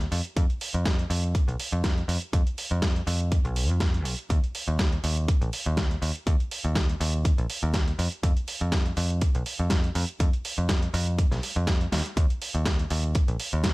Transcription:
0.01 closed hi-hat
0.12 picked electric bass F2, open hi-hat
0.25 closed hi-hat
0.36 picked electric bass F2, kick, closed hi-hat
0.50 closed hi-hat
0.61 open hi-hat
0.74 picked electric bass F2
0.86 kick, snare, closed hi-hat
0.99 closed hi-hat
1.10 picked electric bass F2, open hi-hat
1.24 closed hi-hat
1.35 muted picked electric bass stroke, kick, closed hi-hat
1.48 picked electric bass B1, closed hi-hat
1.60 open hi-hat
1.72 picked electric bass F2, closed hi-hat
1.84 kick, snare, closed hi-hat
1.98 closed hi-hat
2.08 picked electric bass F2, open hi-hat
2.22 closed hi-hat
2.33 picked electric bass F2, kick, closed hi-hat
2.47 closed hi-hat
2.58 open hi-hat
2.71 picked electric bass F2, closed hi-hat
2.82 kick, snare, closed hi-hat
2.96 closed hi-hat
3.07 picked electric bass F2, open hi-hat
3.21 closed hi-hat
3.32 kick, closed hi-hat
3.45 picked electric bass B1, closed hi-hat
3.56 open hi-hat
3.69 picked electric bass F2, closed hi-hat
3.80 kick, snare, closed hi-hat
3.94 closed hi-hat
4.05 picked electric bass B1, open hi-hat
4.19 closed hi-hat
4.30 picked electric bass D#2, kick, closed hi-hat
4.44 closed hi-hat
4.55 open hi-hat
4.68 picked electric bass D#2, closed hi-hat
4.79 kick, snare, closed hi-hat
4.93 closed hi-hat
5.04 picked electric bass D#2, open hi-hat
5.17 closed hi-hat
5.28 muted picked electric bass stroke, kick, closed hi-hat
5.41 picked electric bass A#1, closed hi-hat
5.53 open hi-hat
5.66 picked electric bass D#2, closed hi-hat
5.77 kick, snare, closed hi-hat
5.91 closed hi-hat
6.02 picked electric bass D#2, open hi-hat
6.16 closed hi-hat
6.27 picked electric bass D#2, kick, closed hi-hat
6.40 closed hi-hat
6.51 open hi-hat
6.64 picked electric bass D#2, closed hi-hat
6.75 kick, snare, closed hi-hat
6.89 closed hi-hat
7.00 picked electric bass D#2, open hi-hat
7.14 closed hi-hat
7.25 kick, closed hi-hat
7.38 picked electric bass A#1, closed hi-hat
7.50 open hi-hat
7.63 picked electric bass D#2, closed hi-hat
7.74 kick, snare, closed hi-hat
7.88 closed hi-hat
7.99 picked electric bass F2, open hi-hat
8.12 closed hi-hat
8.23 picked electric bass F2, kick, closed hi-hat
8.37 closed hi-hat
8.48 open hi-hat
8.61 picked electric bass F2, closed hi-hat
8.72 kick, snare, closed hi-hat
8.86 closed hi-hat
8.97 picked electric bass F2, open hi-hat
9.10 closed hi-hat
9.21 muted picked electric bass stroke, kick, closed hi-hat
9.35 picked electric bass B1, closed hi-hat
9.46 open hi-hat
9.59 picked electric bass F2, closed hi-hat
9.70 kick, snare, closed hi-hat
9.84 closed hi-hat
9.95 picked electric bass F2, open hi-hat
10.09 closed hi-hat
10.20 picked electric bass F2, kick, closed hi-hat
10.33 closed hi-hat
10.45 open hi-hat
10.58 picked electric bass F2, closed hi-hat
10.69 kick, snare, closed hi-hat
10.83 closed hi-hat
10.94 picked electric bass F2, open hi-hat
11.07 closed hi-hat
11.18 kick, closed hi-hat
11.31 picked electric bass B1, snare, closed hi-hat
11.43 open hi-hat
11.56 picked electric bass F2, closed hi-hat
11.67 kick, snare, closed hi-hat
11.81 closed hi-hat
11.92 picked electric bass D#2, snare, open hi-hat
12.06 closed hi-hat
12.17 picked electric bass D#2, kick, closed hi-hat
12.30 closed hi-hat
12.42 open hi-hat
12.55 picked electric bass D#2, closed hi-hat
12.66 kick, snare, closed hi-hat
12.79 closed hi-hat
12.90 picked electric bass D#2, open hi-hat
13.04 closed hi-hat
13.15 muted picked electric bass stroke, kick, closed hi-hat
13.28 picked electric bass A#1, closed hi-hat
13.40 open hi-hat
13.53 picked electric bass D#2, closed hi-hat
13.64 kick, snare, closed hi-hat

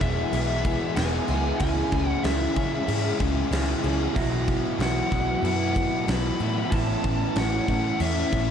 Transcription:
Already playing: clean electric guitar E2 B2 E3 G#3 B3 E4, overdriven electric guitar E3, twelve-string acoustic guitar E3 E4
0.00 picked electric bass E1, overdriven electric guitar E3 G#3 B3 E4, twelve-string acoustic guitar G#4, lead electric guitar E5, kick, crash
0.32 picked electric bass B1, overdriven electric guitar E3 G#3 B3 E4, twelve-string acoustic guitar B3, crash
0.65 overdriven electric guitar G#3 B3 E4, twelve-string acoustic guitar G#4, kick, crash
0.95 picked electric bass E1, overdriven electric guitar E3 G#3 B3 E4, twelve-string acoustic guitar E4, lead electric guitar G#5, snare, crash
1.28 picked electric bass C#2, overdriven electric guitar E3 G#3 B3 E4, twelve-string acoustic guitar G#4, crash
1.58 picked electric bass C#2, overdriven electric guitar C#3 G#3, clean electric guitar E3, twelve-string acoustic guitar E3, lead electric guitar G#5, kick, crash
1.62 overdriven electric guitar C#4 E4
1.92 picked electric bass C#2, twelve-string acoustic guitar E3, overdriven electric guitar G#3 C#4 E4, kick, crash
2.09 lead electric guitar F#5
2.23 picked electric bass C#2, overdriven electric guitar C#3 G#3 C#4 E4, twelve-string acoustic guitar C#4, lead electric guitar E5, snare, crash
2.55 overdriven electric guitar C#3 G#3 C#4 E4, picked electric bass C#3, twelve-string acoustic guitar G#4, kick, crash
2.87 picked electric bass G#2, overdriven electric guitar C#3 G#3 C#4 E4, twelve-string acoustic guitar G#3, crash
3.19 picked electric bass C#2, overdriven electric guitar G#3 C#4 E4, twelve-string acoustic guitar G#4, kick, crash
3.51 picked electric bass C#2, overdriven electric guitar C#3 G#3 C#4 E4, twelve-string acoustic guitar C#4, snare, crash
3.82 picked electric bass C#2, overdriven electric guitar C#3 G#3 C#4 E4, twelve-string acoustic guitar G#4, crash
4.15 picked electric bass B1, overdriven electric guitar B2 E3 F#3 B3 E4, twelve-string acoustic guitar E3, clean electric guitar F#4, kick, crash
4.47 twelve-string acoustic guitar E3, overdriven electric guitar F#3 B3 E4, kick, crash
4.78 picked electric bass B1, overdriven electric guitar B2 E3 F#3 B3 E4, twelve-string acoustic guitar E4, lead electric guitar F#5, snare, crash
5.10 picked electric bass B1, overdriven electric guitar B2 E3 B3 E4, twelve-string acoustic guitar F#4, kick, crash
5.14 overdriven electric guitar F#3
5.42 picked electric bass F#2, overdriven electric guitar B2 E3 F#3 B3 E4, twelve-string acoustic guitar B3, lead electric guitar F#5, crash
5.74 overdriven electric guitar F#3 B3 E4, twelve-string acoustic guitar F#4, kick, crash
6.06 picked electric bass B1, overdriven electric guitar B2 E3 F#3 B3 E4, twelve-string acoustic guitar E4, lead electric guitar B5, snare, crash
6.39 picked electric bass A2, overdriven electric guitar B2 E3 F#3 B3 E4, twelve-string acoustic guitar F#4, crash
6.71 picked electric bass A1, overdriven electric guitar A2 E3 A3 C#4 E4, twelve-string acoustic guitar E3, clean electric guitar B3, lead electric guitar A5, kick, crash
7.03 picked electric bass A1, twelve-string acoustic guitar E3, overdriven electric guitar A3 C#4 E4, kick, crash
7.35 picked electric bass A1, overdriven electric guitar A2 E3 A3 C#4 E4, twelve-string acoustic guitar C#4, lead electric guitar F#5, snare, crash
7.67 overdriven electric guitar A2 E3 A3 C#4 E4, picked electric bass A2, twelve-string acoustic guitar A4, kick, crash
8.00 picked electric bass E2, overdriven electric guitar A2 E3 A3 C#4 E4, twelve-string acoustic guitar B3, lead electric guitar E5, crash
8.31 picked electric bass A1, overdriven electric guitar A3 C#4 E4, twelve-string acoustic guitar A4, kick, crash

